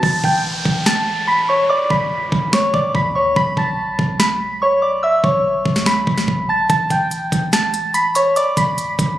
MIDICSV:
0, 0, Header, 1, 5, 480
1, 0, Start_track
1, 0, Tempo, 416667
1, 35, Time_signature, 4, 2, 24, 8
1, 10581, End_track
2, 0, Start_track
2, 0, Title_t, "Synth bell"
2, 0, Program_c, 0, 98
2, 33, Note_on_c, 0, 81, 97
2, 42, Note_on_c, 0, 93, 80
2, 222, Note_off_c, 0, 81, 0
2, 228, Note_off_c, 0, 93, 0
2, 279, Note_on_c, 0, 79, 76
2, 288, Note_on_c, 0, 91, 58
2, 953, Note_off_c, 0, 79, 0
2, 958, Note_off_c, 0, 91, 0
2, 993, Note_on_c, 0, 81, 87
2, 1002, Note_on_c, 0, 93, 72
2, 1445, Note_off_c, 0, 81, 0
2, 1450, Note_off_c, 0, 93, 0
2, 1469, Note_on_c, 0, 83, 83
2, 1478, Note_on_c, 0, 95, 64
2, 1660, Note_off_c, 0, 83, 0
2, 1665, Note_off_c, 0, 95, 0
2, 1713, Note_on_c, 0, 85, 74
2, 1722, Note_on_c, 0, 73, 57
2, 1902, Note_off_c, 0, 85, 0
2, 1908, Note_off_c, 0, 73, 0
2, 1952, Note_on_c, 0, 86, 101
2, 1961, Note_on_c, 0, 74, 81
2, 2142, Note_off_c, 0, 86, 0
2, 2147, Note_off_c, 0, 74, 0
2, 2195, Note_on_c, 0, 83, 76
2, 2204, Note_on_c, 0, 95, 59
2, 2871, Note_off_c, 0, 83, 0
2, 2876, Note_off_c, 0, 95, 0
2, 2920, Note_on_c, 0, 85, 92
2, 2929, Note_on_c, 0, 73, 70
2, 3106, Note_off_c, 0, 85, 0
2, 3112, Note_off_c, 0, 73, 0
2, 3151, Note_on_c, 0, 86, 85
2, 3160, Note_on_c, 0, 74, 66
2, 3341, Note_off_c, 0, 86, 0
2, 3346, Note_off_c, 0, 74, 0
2, 3398, Note_on_c, 0, 83, 82
2, 3408, Note_on_c, 0, 95, 64
2, 3586, Note_off_c, 0, 83, 0
2, 3591, Note_off_c, 0, 95, 0
2, 3633, Note_on_c, 0, 85, 79
2, 3642, Note_on_c, 0, 73, 58
2, 3822, Note_off_c, 0, 85, 0
2, 3828, Note_off_c, 0, 73, 0
2, 3873, Note_on_c, 0, 83, 108
2, 3882, Note_on_c, 0, 95, 90
2, 4062, Note_off_c, 0, 83, 0
2, 4068, Note_off_c, 0, 95, 0
2, 4120, Note_on_c, 0, 81, 81
2, 4129, Note_on_c, 0, 93, 59
2, 4794, Note_off_c, 0, 81, 0
2, 4799, Note_off_c, 0, 93, 0
2, 4832, Note_on_c, 0, 83, 88
2, 4841, Note_on_c, 0, 95, 66
2, 5284, Note_off_c, 0, 83, 0
2, 5289, Note_off_c, 0, 95, 0
2, 5320, Note_on_c, 0, 85, 89
2, 5330, Note_on_c, 0, 73, 75
2, 5507, Note_off_c, 0, 85, 0
2, 5512, Note_off_c, 0, 73, 0
2, 5553, Note_on_c, 0, 86, 77
2, 5563, Note_on_c, 0, 74, 58
2, 5742, Note_off_c, 0, 86, 0
2, 5748, Note_off_c, 0, 74, 0
2, 5793, Note_on_c, 0, 88, 100
2, 5802, Note_on_c, 0, 76, 77
2, 5982, Note_off_c, 0, 88, 0
2, 5988, Note_off_c, 0, 76, 0
2, 6033, Note_on_c, 0, 85, 74
2, 6042, Note_on_c, 0, 73, 58
2, 6711, Note_off_c, 0, 85, 0
2, 6715, Note_off_c, 0, 73, 0
2, 6756, Note_on_c, 0, 83, 85
2, 6765, Note_on_c, 0, 95, 70
2, 7432, Note_off_c, 0, 83, 0
2, 7437, Note_off_c, 0, 95, 0
2, 7477, Note_on_c, 0, 81, 74
2, 7486, Note_on_c, 0, 93, 66
2, 7665, Note_off_c, 0, 81, 0
2, 7670, Note_off_c, 0, 93, 0
2, 7713, Note_on_c, 0, 81, 99
2, 7722, Note_on_c, 0, 93, 81
2, 7902, Note_off_c, 0, 81, 0
2, 7908, Note_off_c, 0, 93, 0
2, 7959, Note_on_c, 0, 79, 81
2, 7968, Note_on_c, 0, 91, 58
2, 8633, Note_off_c, 0, 79, 0
2, 8639, Note_off_c, 0, 91, 0
2, 8673, Note_on_c, 0, 81, 89
2, 8682, Note_on_c, 0, 93, 74
2, 9125, Note_off_c, 0, 81, 0
2, 9130, Note_off_c, 0, 93, 0
2, 9149, Note_on_c, 0, 83, 81
2, 9158, Note_on_c, 0, 95, 65
2, 9340, Note_off_c, 0, 83, 0
2, 9345, Note_off_c, 0, 95, 0
2, 9392, Note_on_c, 0, 85, 73
2, 9401, Note_on_c, 0, 73, 58
2, 9582, Note_off_c, 0, 85, 0
2, 9588, Note_off_c, 0, 73, 0
2, 9634, Note_on_c, 0, 86, 97
2, 9643, Note_on_c, 0, 74, 80
2, 9823, Note_off_c, 0, 86, 0
2, 9828, Note_off_c, 0, 74, 0
2, 9875, Note_on_c, 0, 83, 75
2, 9884, Note_on_c, 0, 95, 57
2, 10552, Note_off_c, 0, 83, 0
2, 10556, Note_off_c, 0, 95, 0
2, 10581, End_track
3, 0, Start_track
3, 0, Title_t, "808-style bass"
3, 0, Program_c, 1, 38
3, 34, Note_on_c, 1, 33, 108
3, 265, Note_off_c, 1, 33, 0
3, 273, Note_on_c, 1, 33, 103
3, 735, Note_off_c, 1, 33, 0
3, 754, Note_on_c, 1, 33, 100
3, 1908, Note_off_c, 1, 33, 0
3, 2193, Note_on_c, 1, 31, 104
3, 2654, Note_off_c, 1, 31, 0
3, 2674, Note_on_c, 1, 31, 105
3, 3034, Note_on_c, 1, 35, 95
3, 3052, Note_off_c, 1, 31, 0
3, 3148, Note_off_c, 1, 35, 0
3, 3154, Note_on_c, 1, 31, 107
3, 3385, Note_off_c, 1, 31, 0
3, 3395, Note_on_c, 1, 38, 107
3, 3855, Note_off_c, 1, 38, 0
3, 3875, Note_on_c, 1, 35, 110
3, 4105, Note_off_c, 1, 35, 0
3, 4113, Note_on_c, 1, 35, 103
3, 4575, Note_off_c, 1, 35, 0
3, 4595, Note_on_c, 1, 35, 102
3, 5988, Note_off_c, 1, 35, 0
3, 6034, Note_on_c, 1, 35, 102
3, 6495, Note_off_c, 1, 35, 0
3, 6515, Note_on_c, 1, 35, 103
3, 6975, Note_off_c, 1, 35, 0
3, 6994, Note_on_c, 1, 35, 105
3, 7225, Note_off_c, 1, 35, 0
3, 7235, Note_on_c, 1, 35, 110
3, 7695, Note_off_c, 1, 35, 0
3, 7714, Note_on_c, 1, 33, 114
3, 7945, Note_off_c, 1, 33, 0
3, 7953, Note_on_c, 1, 33, 104
3, 8415, Note_off_c, 1, 33, 0
3, 8435, Note_on_c, 1, 33, 103
3, 9588, Note_off_c, 1, 33, 0
3, 9873, Note_on_c, 1, 31, 102
3, 10334, Note_off_c, 1, 31, 0
3, 10354, Note_on_c, 1, 31, 104
3, 10581, Note_off_c, 1, 31, 0
3, 10581, End_track
4, 0, Start_track
4, 0, Title_t, "Downlifter"
4, 0, Program_c, 2, 103
4, 34, Note_on_c, 2, 60, 83
4, 3874, Note_off_c, 2, 60, 0
4, 10581, End_track
5, 0, Start_track
5, 0, Title_t, "Drums"
5, 34, Note_on_c, 9, 36, 120
5, 149, Note_off_c, 9, 36, 0
5, 273, Note_on_c, 9, 36, 93
5, 388, Note_off_c, 9, 36, 0
5, 754, Note_on_c, 9, 36, 102
5, 869, Note_off_c, 9, 36, 0
5, 994, Note_on_c, 9, 38, 115
5, 1109, Note_off_c, 9, 38, 0
5, 2193, Note_on_c, 9, 36, 96
5, 2308, Note_off_c, 9, 36, 0
5, 2674, Note_on_c, 9, 36, 99
5, 2790, Note_off_c, 9, 36, 0
5, 2914, Note_on_c, 9, 38, 120
5, 3030, Note_off_c, 9, 38, 0
5, 3154, Note_on_c, 9, 36, 105
5, 3269, Note_off_c, 9, 36, 0
5, 3394, Note_on_c, 9, 36, 98
5, 3510, Note_off_c, 9, 36, 0
5, 3875, Note_on_c, 9, 36, 116
5, 3990, Note_off_c, 9, 36, 0
5, 4113, Note_on_c, 9, 36, 98
5, 4229, Note_off_c, 9, 36, 0
5, 4595, Note_on_c, 9, 36, 102
5, 4710, Note_off_c, 9, 36, 0
5, 4835, Note_on_c, 9, 38, 118
5, 4950, Note_off_c, 9, 38, 0
5, 6034, Note_on_c, 9, 36, 99
5, 6149, Note_off_c, 9, 36, 0
5, 6515, Note_on_c, 9, 36, 98
5, 6630, Note_off_c, 9, 36, 0
5, 6634, Note_on_c, 9, 38, 66
5, 6750, Note_off_c, 9, 38, 0
5, 6754, Note_on_c, 9, 38, 119
5, 6869, Note_off_c, 9, 38, 0
5, 6994, Note_on_c, 9, 36, 106
5, 7109, Note_off_c, 9, 36, 0
5, 7115, Note_on_c, 9, 38, 67
5, 7230, Note_off_c, 9, 38, 0
5, 7235, Note_on_c, 9, 36, 98
5, 7350, Note_off_c, 9, 36, 0
5, 7714, Note_on_c, 9, 36, 120
5, 7714, Note_on_c, 9, 42, 72
5, 7829, Note_off_c, 9, 42, 0
5, 7830, Note_off_c, 9, 36, 0
5, 7953, Note_on_c, 9, 36, 94
5, 7954, Note_on_c, 9, 42, 87
5, 8069, Note_off_c, 9, 36, 0
5, 8069, Note_off_c, 9, 42, 0
5, 8194, Note_on_c, 9, 42, 82
5, 8309, Note_off_c, 9, 42, 0
5, 8434, Note_on_c, 9, 36, 102
5, 8438, Note_on_c, 9, 42, 65
5, 8550, Note_off_c, 9, 36, 0
5, 8553, Note_off_c, 9, 42, 0
5, 8674, Note_on_c, 9, 38, 121
5, 8676, Note_on_c, 9, 42, 69
5, 8789, Note_off_c, 9, 38, 0
5, 8791, Note_off_c, 9, 42, 0
5, 8913, Note_on_c, 9, 42, 79
5, 9028, Note_off_c, 9, 42, 0
5, 9150, Note_on_c, 9, 42, 74
5, 9265, Note_off_c, 9, 42, 0
5, 9392, Note_on_c, 9, 42, 85
5, 9507, Note_off_c, 9, 42, 0
5, 9634, Note_on_c, 9, 42, 69
5, 9749, Note_off_c, 9, 42, 0
5, 9873, Note_on_c, 9, 36, 100
5, 9873, Note_on_c, 9, 42, 87
5, 9988, Note_off_c, 9, 36, 0
5, 9989, Note_off_c, 9, 42, 0
5, 10114, Note_on_c, 9, 42, 78
5, 10229, Note_off_c, 9, 42, 0
5, 10354, Note_on_c, 9, 36, 98
5, 10358, Note_on_c, 9, 42, 66
5, 10470, Note_off_c, 9, 36, 0
5, 10473, Note_off_c, 9, 42, 0
5, 10581, End_track
0, 0, End_of_file